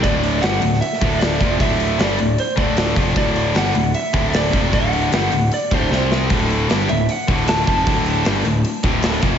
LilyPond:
<<
  \new Staff \with { instrumentName = "Lead electric guitar" } { \time 4/4 \key c \lydian \tempo 4 = 153 d''4 fis''4 e''4 d''4 | e''4 d''4 c''8 d''4 r8 | d''4 fis''4 e''4 d''4 | fis''4 fis''4 d''8 c''4 r8 |
r4. e''8 fis''4 a''8 a''8~ | a''2.~ a''8 r8 | }
  \new Staff \with { instrumentName = "Distorted electric guitar" } { \clef bass \time 4/4 \key c \lydian <d, a, d>4 <g, d g>8 <d, a,>8 r8 <d, a, d>4 <f, c f>8 | <d, a, d>4 <g, d g>8 <d, a,>8 r8 <d, a, d>4 <f, c f>8 | <d, a, d>4 <g, d g>8 <d, a,>8 r8 <d, a, d>4 <f, c f>8 | <d, a, d>4 <g, d g>8 <d, a,>8 r8 <d, a, d>8 <c g c'>4 |
<d, a, d>4 <g, d g>8 <d, a,>8 r8 <d, a, d>4 <f, c f>8 | <d, a, d>4 <g, d g>8 <d, a,>8 r8 <d, a, d>4 <f, c f>8 | }
  \new Staff \with { instrumentName = "Distorted electric guitar" } { \clef bass \time 4/4 \key c \lydian <d, a, d>4 <g, d g>8 <d, a,>8 r8 <d, a, d>4 <f, c f>8 | <d, a, d>4 <g, d g>8 <d, a,>8 r8 <d, a, d>4 <f, c f>8 | <d, a, d>4 <g, d g>8 <d, a,>8 r8 <d, a, d>4 <f, c f>8 | <d, a, d>4 <g, d g>8 <d, a,>8 r8 <d, a, d>8 <c g c'>4 |
<d, a, d>4 <g, d g>8 <d, a,>8 r8 <d, a, d>4 <f, c f>8 | <d, a, d>4 <g, d g>8 <d, a,>8 r8 <d, a, d>4 <f, c f>8 | }
  \new Staff \with { instrumentName = "Picked electric bass" } { \clef bass \time 4/4 \key c \lydian d,,4 g,,8 d,,8 r8 d,,4 f,,8 | d,,4 g,,8 d,,8 r8 d,,4 f,,8 | d,,4 g,,8 d,,8 r8 d,,4 f,,8 | d,,4 g,,8 d,,8 r8 d,,8 c,4 |
d,,4 g,,8 d,,8 r8 d,,4 f,,8 | d,,4 g,,8 d,,8 r8 d,,4 f,,8 | }
  \new DrumStaff \with { instrumentName = "Drums" } \drummode { \time 4/4 <hho bd>8 hho8 <hho sn>8 hho16 sn16 hho16 sn16 <hho bd>8 <hho sn>8 <hho bd>8 | <hho bd>8 hho8 <hho sn>8 hho8 hho8 <hho bd>8 <hho sn>8 <hho bd>8 | <hho bd>8 hho8 <hho sn>8 hho8 hho8 <hho bd>8 <hho sn>8 <hho bd>8 | <hho bd>8 hho8 <hho sn>8 hho8 hho8 <hho bd>8 sn8 sn8 |
<hho bd>8 hho8 <hho sn>8 hho8 hho8 <hho bd>8 <hho sn>8 <hho bd>8 | <hho bd>8 hho8 <hho sn>8 hho8 hho8 <hho bd>8 <hho sn>8 <hho bd>8 | }
>>